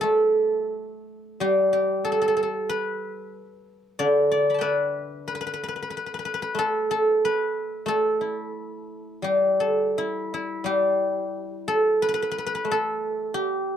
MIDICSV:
0, 0, Header, 1, 2, 480
1, 0, Start_track
1, 0, Tempo, 675676
1, 43, Time_signature, 4, 2, 24, 8
1, 1481, Tempo, 642398
1, 5801, Tempo, 678733
1, 6761, Tempo, 700935
1, 8201, Tempo, 657174
1, 9985, End_track
2, 0, Start_track
2, 0, Title_t, "Guzheng"
2, 0, Program_c, 0, 107
2, 0, Note_on_c, 0, 55, 43
2, 0, Note_on_c, 0, 67, 68
2, 6, Note_on_c, 0, 69, 77
2, 23, Note_on_c, 0, 57, 48
2, 528, Note_off_c, 0, 55, 0
2, 674, Note_off_c, 0, 67, 0
2, 997, Note_on_c, 0, 55, 49
2, 1002, Note_on_c, 0, 67, 72
2, 1225, Note_off_c, 0, 67, 0
2, 1227, Note_on_c, 0, 67, 63
2, 1450, Note_off_c, 0, 69, 0
2, 1453, Note_on_c, 0, 69, 72
2, 1471, Note_off_c, 0, 57, 0
2, 1504, Note_off_c, 0, 69, 0
2, 1507, Note_on_c, 0, 69, 59
2, 1576, Note_off_c, 0, 69, 0
2, 1579, Note_on_c, 0, 69, 66
2, 1623, Note_off_c, 0, 69, 0
2, 1626, Note_on_c, 0, 69, 58
2, 1688, Note_off_c, 0, 69, 0
2, 1691, Note_on_c, 0, 69, 61
2, 1734, Note_off_c, 0, 69, 0
2, 1737, Note_on_c, 0, 69, 54
2, 1937, Note_on_c, 0, 71, 77
2, 2435, Note_off_c, 0, 55, 0
2, 2905, Note_on_c, 0, 74, 81
2, 2910, Note_on_c, 0, 50, 46
2, 2977, Note_off_c, 0, 67, 0
2, 3144, Note_off_c, 0, 74, 0
2, 3147, Note_on_c, 0, 74, 71
2, 3283, Note_on_c, 0, 86, 35
2, 3287, Note_on_c, 0, 83, 40
2, 3317, Note_on_c, 0, 81, 39
2, 3349, Note_on_c, 0, 79, 47
2, 3366, Note_off_c, 0, 71, 0
2, 3369, Note_off_c, 0, 74, 0
2, 3369, Note_on_c, 0, 71, 89
2, 3372, Note_on_c, 0, 74, 50
2, 3375, Note_on_c, 0, 76, 44
2, 3379, Note_off_c, 0, 69, 0
2, 3863, Note_off_c, 0, 71, 0
2, 3866, Note_on_c, 0, 71, 72
2, 3917, Note_off_c, 0, 71, 0
2, 3920, Note_on_c, 0, 71, 58
2, 3961, Note_off_c, 0, 71, 0
2, 3964, Note_on_c, 0, 71, 63
2, 4005, Note_off_c, 0, 71, 0
2, 4008, Note_on_c, 0, 71, 56
2, 4056, Note_off_c, 0, 71, 0
2, 4059, Note_on_c, 0, 71, 59
2, 4131, Note_off_c, 0, 71, 0
2, 4134, Note_on_c, 0, 71, 53
2, 4167, Note_off_c, 0, 71, 0
2, 4170, Note_on_c, 0, 71, 60
2, 4195, Note_off_c, 0, 86, 0
2, 4222, Note_off_c, 0, 71, 0
2, 4225, Note_on_c, 0, 71, 45
2, 4273, Note_off_c, 0, 71, 0
2, 4276, Note_on_c, 0, 71, 55
2, 4296, Note_off_c, 0, 83, 0
2, 4331, Note_off_c, 0, 71, 0
2, 4334, Note_on_c, 0, 71, 48
2, 4341, Note_off_c, 0, 50, 0
2, 4380, Note_off_c, 0, 71, 0
2, 4383, Note_on_c, 0, 71, 52
2, 4401, Note_off_c, 0, 81, 0
2, 4451, Note_off_c, 0, 71, 0
2, 4454, Note_on_c, 0, 71, 47
2, 4508, Note_off_c, 0, 71, 0
2, 4511, Note_on_c, 0, 71, 56
2, 4512, Note_off_c, 0, 79, 0
2, 4545, Note_off_c, 0, 71, 0
2, 4548, Note_on_c, 0, 71, 54
2, 4591, Note_off_c, 0, 71, 0
2, 4594, Note_on_c, 0, 71, 67
2, 4657, Note_off_c, 0, 71, 0
2, 4660, Note_on_c, 0, 71, 60
2, 4663, Note_off_c, 0, 76, 0
2, 4719, Note_off_c, 0, 71, 0
2, 4722, Note_on_c, 0, 71, 65
2, 4754, Note_off_c, 0, 74, 0
2, 4814, Note_on_c, 0, 57, 50
2, 4844, Note_on_c, 0, 69, 83
2, 5082, Note_off_c, 0, 69, 0
2, 5085, Note_on_c, 0, 69, 77
2, 5336, Note_off_c, 0, 71, 0
2, 5339, Note_on_c, 0, 71, 76
2, 5786, Note_off_c, 0, 57, 0
2, 5795, Note_on_c, 0, 57, 52
2, 5809, Note_off_c, 0, 69, 0
2, 5812, Note_on_c, 0, 69, 76
2, 6043, Note_on_c, 0, 64, 34
2, 6761, Note_on_c, 0, 55, 47
2, 6774, Note_on_c, 0, 67, 63
2, 6810, Note_off_c, 0, 71, 0
2, 7011, Note_off_c, 0, 64, 0
2, 7016, Note_off_c, 0, 69, 0
2, 7019, Note_on_c, 0, 69, 59
2, 7251, Note_off_c, 0, 57, 0
2, 7278, Note_on_c, 0, 64, 68
2, 7521, Note_off_c, 0, 64, 0
2, 7524, Note_on_c, 0, 64, 61
2, 7723, Note_off_c, 0, 55, 0
2, 7731, Note_on_c, 0, 55, 48
2, 7740, Note_off_c, 0, 67, 0
2, 7742, Note_on_c, 0, 67, 75
2, 8455, Note_off_c, 0, 69, 0
2, 8458, Note_on_c, 0, 69, 87
2, 8709, Note_on_c, 0, 71, 74
2, 8753, Note_off_c, 0, 71, 0
2, 8755, Note_on_c, 0, 71, 61
2, 8791, Note_off_c, 0, 71, 0
2, 8794, Note_on_c, 0, 71, 70
2, 8854, Note_off_c, 0, 71, 0
2, 8856, Note_on_c, 0, 71, 58
2, 8920, Note_off_c, 0, 71, 0
2, 8922, Note_on_c, 0, 71, 69
2, 8970, Note_off_c, 0, 71, 0
2, 8973, Note_on_c, 0, 71, 59
2, 9030, Note_off_c, 0, 71, 0
2, 9032, Note_on_c, 0, 71, 67
2, 9090, Note_off_c, 0, 71, 0
2, 9093, Note_on_c, 0, 71, 58
2, 9165, Note_on_c, 0, 57, 45
2, 9170, Note_off_c, 0, 55, 0
2, 9212, Note_off_c, 0, 69, 0
2, 9215, Note_on_c, 0, 69, 88
2, 9387, Note_off_c, 0, 64, 0
2, 9435, Note_off_c, 0, 67, 0
2, 9673, Note_on_c, 0, 67, 77
2, 9985, Note_off_c, 0, 57, 0
2, 9985, Note_off_c, 0, 67, 0
2, 9985, Note_off_c, 0, 69, 0
2, 9985, Note_off_c, 0, 71, 0
2, 9985, End_track
0, 0, End_of_file